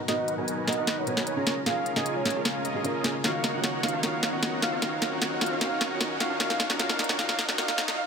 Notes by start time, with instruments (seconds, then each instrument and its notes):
Already playing: ambient pad B2 F#3 D#4 A#5, riser
0.07 felt piano B2 B3 D#4 A#4, supersaw synth D#4 F#4 A#4 B4 F#5, soft synth lead D#5, snare, closed hi-hat
0.28 closed hi-hat
0.37 felt piano B2 B3 D#4 A#4, supersaw synth D#4 F#4 A#4 B4 G#5
0.48 closed hi-hat
0.67 felt piano B2 B3 D#4 A#4, soft synth lead D#5, snare, closed hi-hat
0.73 closed hi-hat
0.77 supersaw synth D#4 F#4 A#4 B4 F#5
0.87 snare, closed hi-hat
0.98 soft synth lead C#5
1.06 felt piano B2 B3 D#4 B4, supersaw synth D#4 F#4 A#4 B4 G#5, closed hi-hat
1.17 snare
1.27 soft synth lead C#5, closed hi-hat
1.36 felt piano C#3 C#4 F4 G#4, supersaw synth C#4 F4 G#4 A#4 A#5
1.46 ambient pad C#3 G#3 F4, snare, closed hi-hat
1.65 felt piano C#3 C#4 F4 G#4, supersaw synth C#4 F4 G#4 A#4 F5, soft synth lead F5, snare, closed hi-hat
1.86 closed hi-hat
1.95 felt piano C#3 C#4 F4 G#4, supersaw synth C#4 F4 G#4 A#4 G#5, soft synth lead D#5, snare
2.06 closed hi-hat
2.16 soft synth lead C#5
2.24 felt piano C#3 C#4 F4 G#4, snare, closed hi-hat
2.30 closed hi-hat
2.35 supersaw synth C#4 F4 G#4 A#4 F5
2.45 snare, closed hi-hat
2.65 supersaw synth C#4 F4 G#4 A#4 D#5, closed hi-hat
2.74 felt piano C#3 C#4 F4 G#4
2.84 felt piano C#3 C#4 F4 A#4, closed hi-hat
2.94 supersaw synth C#4 F4 G#4 A#4 D#5
3.03 felt piano C#3 C#4 F4 G#4, snare, closed hi-hat
3.23 ambient pad D#2 F#4, felt piano D#3 C#4 F4 F#4, supersaw synth D#4 F#4 A#4 C#5 F5, soft synth lead F5, snare, closed hi-hat
3.44 snare, closed hi-hat
3.53 felt piano D#3 C#4 F4 F#4, supersaw synth D#4 F#4 A#4 C#5 F#5
3.64 snare, closed hi-hat
3.82 felt piano D#3 C#4 F4 F#4, soft synth lead F5, snare, closed hi-hat
3.88 closed hi-hat
3.93 supersaw synth D#4 F#4 A#4 C#5 F5
4.02 felt piano D#3 C#4 F4 F#4, supersaw synth D#4 F#4 A#4 C#5 F5, soft synth lead F5, snare, closed hi-hat
4.23 snare, closed hi-hat
4.32 felt piano D#3 C#4 F4 F#4, supersaw synth D#4 F#4 A#4 C#5 F#5
4.43 snare, closed hi-hat
4.61 felt piano D#3 C#4 F4 F#4, soft synth lead F5, snare, closed hi-hat
4.72 supersaw synth D#4 F#4 A#4 C#5 F5
4.81 ambient pad G#2 D#3 B3, felt piano D#3 C#4 F4 F#4, supersaw synth D#4 F#4 A#4 C#5 F5, soft synth lead F5, snare, closed hi-hat
5.02 snare, closed hi-hat
5.11 felt piano D#3 C#4 F4 F#4, supersaw synth D#4 F#4 A#4 C#5 F#5
5.22 snare, closed hi-hat
5.40 felt piano D#3 C#4 F4 F#4, soft synth lead F5, snare, closed hi-hat
5.46 closed hi-hat
5.51 supersaw synth D#4 F#4 A#4 C#5 F5
5.60 felt piano D#3 C#4 F4 F#4, supersaw synth D#4 F#4 A#4 C#5 F5, soft synth lead F5, snare, closed hi-hat
5.81 snare, closed hi-hat
5.90 felt piano D#3 C#4 F4 F#4, supersaw synth D#4 F#4 A#4 C#5 F#5
6.01 snare, closed hi-hat
6.19 ambient pad B2 F#3 D#4 A#4, felt piano D#3 C#4 F4 F#4, soft synth lead F5, snare, closed hi-hat
6.30 supersaw synth D#4 F#4 A#4 C#5 F5
6.39 felt piano D#3 C#4 F4 F#4, supersaw synth D#4 F#4 A#4 C#5 F5, soft synth lead F5, snare, closed hi-hat
6.50 snare
6.60 snare, closed hi-hat
6.69 felt piano D#3 C#4 F4 F#4, supersaw synth D#4 F#4 A#4 C#5 F#5, snare
6.78 felt piano D#3 C#4 F4 F#4, supersaw synth D#4 F#4 A#4 C#5 F5, soft synth lead F5, snare, closed hi-hat
6.89 snare
6.99 snare, closed hi-hat
7.04 felt piano D#3, closed hi-hat
7.09 felt piano C#4 F4 F#4, supersaw synth D#4 F#4 A#4 C#5 F#5, snare
7.18 felt piano D#3 C#4 F4 F#4, supersaw synth D#4 F#4 A#4 C#5 F5, soft synth lead F5, snare, closed hi-hat
7.29 snare
7.39 snare, closed hi-hat
7.47 felt piano D#3 C#4 F4 F#4, supersaw synth D#4 F#4 A#4 C#5 F#5, snare
7.57 felt piano D#3 C#4 F4 F#4, supersaw synth D#4 F#4 A#4 C#5 F5, soft synth lead F5, snare, closed hi-hat
7.68 snare
7.78 ambient pad C#3 G#3 F4, snare, closed hi-hat
7.87 felt piano D#3 C#4 F4, supersaw synth D#4 F4 A#4 C#5 F5, snare
7.98 soft synth lead F5